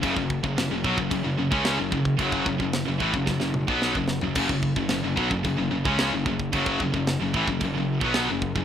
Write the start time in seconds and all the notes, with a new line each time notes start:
0.03 F#1 F#2 C#3, kick, crash
0.16 F#1 F#2 C#3, kick
0.30 kick
0.44 F#1 F#2 C#3, kick
0.57 F#1 F#2 C#3, snare, crash
0.71 F#1 F#2 C#3
0.84 B1 B2 F#3, kick
0.98 F#1 F#2 C#3, kick
1.11 F#1 F#2 C#3, kick, crash
1.24 F#1 F#2 C#3
1.38 F#1 F#2 C#3
1.51 C#2 C#3 G#3 C#4, kick
1.65 snare, crash
1.79 F#1 F#2 C#3
1.92 F#1 F#2 C#3, kick
2.05 kick
2.19 F#1 F#2 C#3 F#3, kick, crash
2.32 kick
2.46 F#1 F#2 C#3, kick
2.60 F#1 F#2 C#3, kick
2.73 snare, crash
2.88 F#1 F#2 C#3
3.00 A1 A2 E3, kick
3.14 F#1 F#2 C#3, kick
3.27 F#1 F#2 C#3, kick, snare
3.40 F#1 F#2 C#3, snare
3.54 mid tom
3.68 B1 B2 F#3 B3, kick
3.82 snare
3.95 F#1 F#2 C#3, kick
4.08 snare
4.21 F#1 F#2 C#3, floor tom
4.35 F#1 F#2 C#3, kick, crash
4.49 F#1 F#2 C#3, kick
4.63 kick
4.76 F#1 F#2 C#3, kick
4.89 F#1 F#2 C#3, snare, crash
5.04 F#1 F#2 C#3
5.16 B1 B2 F#3, kick
5.31 F#1 F#2 C#3, kick
5.44 F#1 F#2 C#3, kick, crash
5.58 F#1 F#2 C#3
5.71 F#1 F#2 C#3
5.85 C#2 C#3 G#3 C#4, kick
5.99 snare, crash
6.11 F#1 F#2 C#3
6.26 F#1 F#2 C#3, kick
6.40 kick
6.53 F#1 F#2 C#3 F#3, kick, crash
6.66 kick
6.80 F#1 F#2 C#3, kick
6.94 F#1 F#2 C#3, kick
7.07 snare, crash
7.20 F#1 F#2 C#3
7.34 A1 A2 E3, kick
7.48 F#1 F#2 C#3, kick
7.60 F#1 F#2 C#3, kick, crash
7.74 F#1 F#2 C#3
8.00 B1 B2, kick
8.05 B2 F#3 B3
8.14 snare, crash
8.29 F#1 F#2 C#3
8.42 kick
8.56 F#1 F#2 C#3, kick